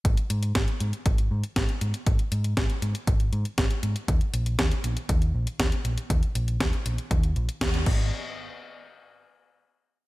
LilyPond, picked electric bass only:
\new Staff \with { instrumentName = "Picked electric bass" } { \clef bass \time 4/4 \key dis \phrygian \tempo 4 = 119 gis,,8 gis,8 gis,,8 gis,8 gis,,8 gis,8 gis,,8 gis,8 | gis,,8 gis,8 gis,,8 gis,8 gis,,8 gis,8 gis,,8 gis,8 | dis,8 ais,,8 dis,8 ais,,8 dis,8 ais,,8 dis,8 ais,,8 | dis,8 ais,,8 dis,8 ais,,8 dis,8 ais,,8 dis,8 gis,,8 |
r1 | }